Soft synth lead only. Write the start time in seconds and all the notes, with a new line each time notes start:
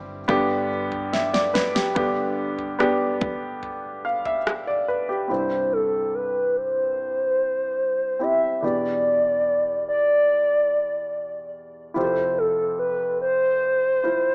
5.31 C5
5.73 A4
6.14 B4
6.57 C5
8.22 E5
8.65 D5
9.89 D5
11.96 C5
12.38 A4
12.79 B4
13.22 C5